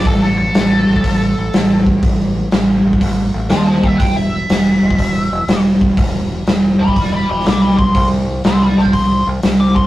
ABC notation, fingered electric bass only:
X:1
M:4/4
L:1/8
Q:"Swing" 1/4=122
K:Clyd
V:1 name="Fingered electric bass" clef=bass
A,,,2 A,,, A,,, A,,, A,,, A,,,2 | A,,,2 A,,, A,,, A,,, A,,, ^D,,2 | E,,,2 E,,, E,,, E,,, E,,, E,,,2 | E,,,2 E,,, E,,, E,,, E,,, B,,,2 |
C,,2 C,, C,, C,, C,, C,,2 |]